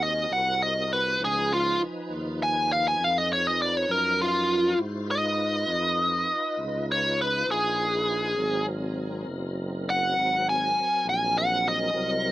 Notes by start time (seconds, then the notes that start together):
Already playing: D#2 C4 F#4 A#4
0.03 D#5
0.30 C2 F#5
0.62 D#5
0.93 B4
1.19 C#2 F3 D#4 B4
1.24 G#4
1.53 F4
2.10 D#2
2.43 G#5
2.72 F5
2.88 G#5
2.99 F2
3.04 F5
3.18 D#5
3.33 C#5
3.47 D#5
3.62 D5
3.77 C#5
3.89 F#2 A#4
4.21 F4
4.77 G#2 E4 F#4 C5
5.06 D#4 F4 B4
5.11 D#5
5.68 F2
6.58 C#2
6.92 C#5
7.21 B4
7.48 A#1 G#4
8.35 G#1 F#3 C4 A#4
9.27 F#1
9.90 F#5
10.17 G#1
10.49 G#5
11.06 A#1 G#5
11.38 F#5
11.68 D#5
11.94 C2 F#3 C4 A#4